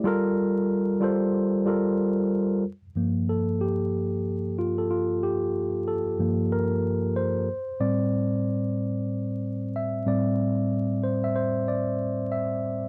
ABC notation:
X:1
M:4/4
L:1/16
Q:"Swing 16ths" 1/4=93
K:Gdor
V:1 name="Tine electric piano"
[G,FAB]4- [G,FAB] z [G,FAc]4 [G,FAB]4- [G,FAB] z | z4 A2 G6 F A F2 | G4 A4 B4 c4 | d2 z8 z2 e2 d2- |
d4 c e c2 d4 e4 |]
V:2 name="Tine electric piano" clef=bass
z16 | z2 [G,,F,B,]12- [G,,F,B,]2- | [G,,F,B,]2 z4 [G,,F,B,]8 z2 | [A,,G,C]12- [A,,G,C]2 [A,,G,C]2- |
[A,,G,C]12- [A,,G,C]2 z2 |]